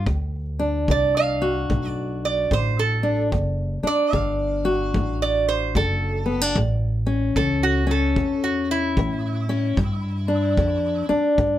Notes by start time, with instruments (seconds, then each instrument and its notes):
0.06 steel-string acoustic guitar D2, upright bass D2, kick
0.59 steel-string acoustic guitar D4
0.88 upright bass C2, steel-string acoustic guitar D3, resonator guitar played with a steel bar D5, kick
1.17 resonator guitar played with a steel bar F5
1.42 steel-string acoustic guitar F#4
1.70 upright bass B1, steel-string acoustic guitar A2, kick
1.88 resonator guitar played with a steel bar D5
2.25 resonator guitar played with a steel bar D5
2.51 upright bass A1, steel-string acoustic guitar D3, resonator guitar played with a steel bar C5, kick
2.79 resonator guitar played with a steel bar A4
3.03 steel-string acoustic guitar D4
3.32 upright bass F#1, steel-string acoustic guitar D2, kick
3.83 steel-string acoustic guitar D4, muted upright bass stroke
3.87 resonator guitar played with a steel bar D5
4.13 upright bass G1, steel-string acoustic guitar D3, resonator guitar played with a steel bar F5, kick
4.65 steel-string acoustic guitar F#4
4.94 upright bass A1, steel-string acoustic guitar A2, kick
5.22 resonator guitar played with a steel bar D5
5.49 resonator guitar played with a steel bar C5
5.75 upright bass F#1, steel-string acoustic guitar D3, resonator guitar played with a steel bar A4, kick
6.26 steel-string acoustic guitar B3
6.41 steel-string acoustic guitar D4
6.55 upright bass A1, steel-string acoustic guitar A2, kick
7.07 steel-string acoustic guitar C#4
7.36 upright bass C#2, steel-string acoustic guitar E3, resonator guitar played with a steel bar A4, kick
7.63 resonator guitar played with a steel bar F#4
7.87 steel-string acoustic guitar C#4
7.91 resonator guitar played with a steel bar A4
8.16 upright bass E2, steel-string acoustic guitar E2, kick
8.44 resonator guitar played with a steel bar F#4
8.71 resonator guitar played with a steel bar E4
8.97 upright bass A2, steel-string acoustic guitar E3, kick
9.49 steel-string acoustic guitar C#4
9.77 upright bass G2, steel-string acoustic guitar G2, kick
10.28 steel-string acoustic guitar D4
10.57 upright bass F2, steel-string acoustic guitar D3, kick
11.09 steel-string acoustic guitar D4, muted upright bass stroke
11.38 upright bass G2, steel-string acoustic guitar D3, kick